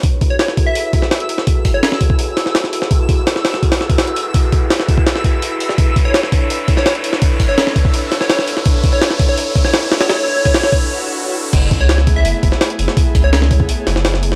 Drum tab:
CC |----------------|----------------|----------------|----------------|
HH |o-o-o-o-o-o-oxo-|o-o-o-o-o-o-o-o-|o-o-o-o-oo-ooxo-|o-o-o-o-o-o-o-o-|
SD |----oo-----oo--o|----oo----oooo-o|----oooo-oo-o---|----oo--oo-----o|
BD |o-o---o---o-----|o-o---oo--------|o-o-----o--o----|o-o---oo--o-----|

CC |----------------|----------------|----------------|----------------|
HH |o-o-o-o-o-o-oxo-|o-o-o-o-o-o-o-o-|o-o-o-o-o-o-oxoo|o---oo-o--------|
SD |----oo-----oo--o|----oo----oooo-o|----oo-----oo-oo|o----oo---------|
BD |o-o---o---o-----|o-o---oo--------|o-o---o---o-----|----o--o--------|

CC |x---------------|----------------|
HH |o-o-o-o-o-o-oxo-|o-o-o-o-o-o-o-o-|
SD |----oo-----oo--o|----oo----oooo-o|
BD |o-o---o---o-----|o-o---oo--------|